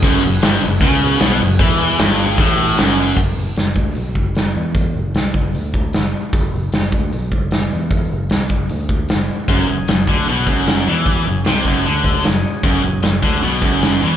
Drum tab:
CC |x-x-x-x-x-x-x-x-|x-x-x-x-x-x-x-x-|----------------|----------------|
HH |----------------|----------------|o---o---o---o---|o---o---o---o---|
SD |----o-------o---|-o--o-------o---|----o-------o---|----o-------o---|
BD |o-------o-------|o-------o-------|o-----o---o-----|o-----o---o-----|

CC |----------------|----------------|----------------|----------------|
HH |o---o---o---o---|o---o---o---o---|o---o---o---o---|o---o---o---o---|
SD |----o-------o---|----o-------o---|----o-------o---|----o-------o---|
BD |o-----o---o-----|o-----o---o-----|o-----o---o-----|o-----o---o-----|

CC |----------------|
HH |o---o---o---o---|
SD |----o-------o---|
BD |o-----o---o-----|